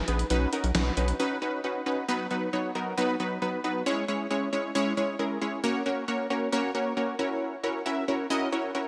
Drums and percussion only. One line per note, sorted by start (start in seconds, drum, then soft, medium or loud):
0.08 closed hi-hat medium
0.19 closed hi-hat medium
0.30 closed hi-hat medium
0.53 closed hi-hat medium
0.64 closed hi-hat soft
0.75 snare loud
0.75 closed hi-hat medium
0.97 closed hi-hat medium
1.08 closed hi-hat medium